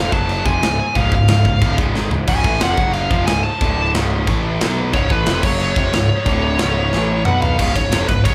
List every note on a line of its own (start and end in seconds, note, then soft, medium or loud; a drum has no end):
0.00 0.11 F1 medium
0.00 0.13 F2 loud
0.00 0.14 C3 loud
0.00 0.13 F3 loud
0.00 0.13 F5 medium
0.12 0.43 F#1 medium
0.12 0.45 F#2 loud
0.12 0.46 C#3 loud
0.12 0.46 F#3 loud
0.12 0.47 A5 loud
0.12 kick medium
0.29 china medium
0.46 0.61 F1 medium
0.46 0.62 F2 medium
0.46 0.62 C3 loud
0.46 0.62 F3 medium
0.46 0.79 G#5 loud
0.46 kick loud
0.63 0.78 C#1 medium
0.63 0.76 C#2 medium
0.63 0.76 G#2 medium
0.63 snare loud
0.63 china medium
0.80 0.96 G#5 loud
0.95 1.11 C#1 loud
0.95 1.12 C#2 medium
0.95 1.11 G#2 loud
0.95 1.12 C#3 loud
0.95 1.13 F5 medium
0.95 kick loud
0.95 china medium
1.12 1.28 C#1 medium
1.12 1.26 C#2 medium
1.12 1.26 G#2 medium
1.12 1.76 F5 medium
1.12 kick medium
1.28 1.44 C#1 medium
1.28 1.42 C#2 medium
1.28 1.42 G#2 medium
1.28 snare loud
1.28 china medium
1.45 1.61 C#1 medium
1.45 1.59 C#2 medium
1.45 1.59 G#2 medium
1.45 kick medium
1.61 1.78 D1 loud
1.61 1.78 D2 medium
1.61 1.78 A2 loud
1.61 1.78 D3 loud
1.61 kick loud
1.61 china medium
1.78 1.94 C#1 medium
1.78 1.95 C#2 medium
1.78 1.94 G#2 medium
1.78 1.95 C#3 loud
1.78 kick loud
1.94 2.10 G#1 loud
1.94 2.11 G#2 medium
1.94 2.11 D#3 loud
1.94 2.12 G#3 loud
1.94 snare medium
2.10 2.26 C#1 medium
2.10 2.25 C#2 medium
2.10 2.25 G#2 medium
2.10 floor tom medium
2.27 2.43 C#1 loud
2.27 2.43 C#2 loud
2.27 2.44 G#2 loud
2.27 2.44 C#3 loud
2.27 2.62 G#5 loud
2.27 kick loud
2.27 china medium
2.27 crash loud
2.44 2.60 A1 medium
2.44 2.59 A2 medium
2.44 2.60 E3 loud
2.44 2.61 A3 loud
2.44 kick loud
2.60 2.77 F1 medium
2.60 2.77 F2 medium
2.60 2.77 C3 loud
2.60 2.77 F3 loud
2.60 2.93 F#5 medium
2.60 snare loud
2.60 china medium
2.77 3.09 F#1 medium
2.77 3.10 F#2 medium
2.77 3.10 C#3 loud
2.77 3.11 F#3 loud
2.77 kick loud
2.93 3.25 F5 medium
2.93 china medium
3.10 3.26 F1 medium
3.10 3.27 F2 medium
3.10 3.27 C3 medium
3.10 3.27 F3 medium
3.10 kick loud
3.26 3.43 C#1 medium
3.26 3.41 C#2 medium
3.26 3.41 G#2 medium
3.26 3.44 G#5 loud
3.26 snare loud
3.26 china medium
3.43 3.90 A5 loud
3.61 3.92 D1 medium
3.61 3.93 D2 loud
3.61 3.93 A2 medium
3.61 3.94 D3 loud
3.61 kick loud
3.61 china medium
3.94 4.25 C#1 loud
3.94 4.26 C#2 loud
3.94 4.26 G#2 loud
3.94 4.27 C#3 loud
3.94 snare loud
3.94 china medium
4.26 4.58 A1 medium
4.26 4.59 A2 medium
4.26 4.60 E3 medium
4.26 4.60 A3 loud
4.26 kick loud
4.26 china medium
4.60 4.92 B1 loud
4.60 4.93 B2 medium
4.60 4.93 F#3 loud
4.60 4.94 B3 loud
4.60 snare loud
4.60 china medium
4.93 5.09 C#1 loud
4.93 5.10 C#2 medium
4.93 5.10 G#2 loud
4.93 5.10 C#3 loud
4.93 5.12 C#5 loud
4.93 kick loud
4.93 china medium
5.10 5.26 A1 loud
5.10 5.26 A2 medium
5.10 5.27 E3 medium
5.10 5.27 A3 loud
5.10 5.43 B4 loud
5.10 kick loud
5.26 5.42 F1 loud
5.26 5.43 F2 loud
5.26 5.43 C3 loud
5.26 5.44 F3 loud
5.26 snare loud
5.26 china medium
5.43 5.74 F#1 loud
5.43 5.76 F#2 loud
5.43 5.76 C#3 loud
5.43 5.76 F#3 loud
5.43 5.61 C#5 loud
5.43 kick loud
5.43 crash loud
5.60 7.23 C#5 loud
5.60 china medium
5.76 5.92 F1 loud
5.76 5.93 F2 medium
5.76 5.93 C3 medium
5.76 5.93 F3 loud
5.76 kick loud
5.93 6.08 C#1 medium
5.93 6.07 C#2 medium
5.93 6.07 G#2 medium
5.93 snare loud
5.93 china medium
6.26 6.57 D1 medium
6.26 6.59 D2 medium
6.26 6.59 A2 medium
6.26 6.59 D3 loud
6.26 kick loud
6.26 china medium
6.59 6.91 C#1 loud
6.59 6.92 C#2 loud
6.59 6.92 G#2 loud
6.59 6.92 C#3 loud
6.59 snare loud
6.59 china medium
6.93 7.24 A1 loud
6.93 7.25 A2 medium
6.93 7.25 E3 loud
6.93 7.26 A3 loud
6.93 snare medium
7.25 7.57 B1 loud
7.25 7.58 B2 medium
7.25 7.58 F#3 medium
7.25 7.58 B3 loud
7.25 7.41 F#5 loud
7.25 mid tom medium
7.41 7.72 F5 loud
7.41 floor tom loud
7.58 7.74 C#1 loud
7.58 7.73 C#2 loud
7.58 7.74 G#2 loud
7.58 7.75 C#3 loud
7.58 kick loud
7.58 crash loud
7.75 7.91 C#1 medium
7.75 7.88 C#2 medium
7.75 7.88 G#2 medium
7.75 8.08 C#5 medium
7.75 kick medium
7.75 ride medium
7.91 8.08 F1 loud
7.91 8.07 F2 medium
7.91 8.08 C3 loud
7.91 8.08 F3 loud
7.91 snare loud
7.91 ride loud
8.08 8.24 C#1 medium
8.08 8.22 C#2 medium
8.08 8.22 G#2 medium
8.08 8.24 B4 medium
8.08 kick medium
8.08 ride medium
8.24 8.35 C#1 medium
8.24 8.35 C#2 medium
8.24 8.35 G#2 loud
8.24 8.35 C#3 loud
8.24 8.35 C#5 medium
8.24 kick loud
8.24 ride loud